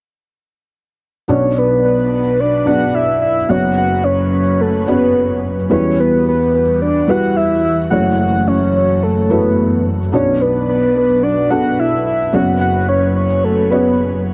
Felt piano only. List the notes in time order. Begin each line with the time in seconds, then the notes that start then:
1.28 B1 B2 B3 D4 F#4 D5
2.66 B3 D4 F#4 D5
3.49 F#1 F#2 B3 C#4 F#4 C#5
4.87 B3 C#4 F#4 C#5
5.70 E2 E3 G3 E4 F#4 B4
7.08 G3 E4 F#4 B4
7.91 F#1 F#2 A3 E4 F#4 C#5
9.30 A3 E4 F#4 A4
10.12 B1 B2 B3 D4 F#4 D5
11.50 B3 D4 F#4 A4
12.32 F#1 F#2 B3 C#4 F#4 C#5
13.70 B3 C#4 F#4 C#5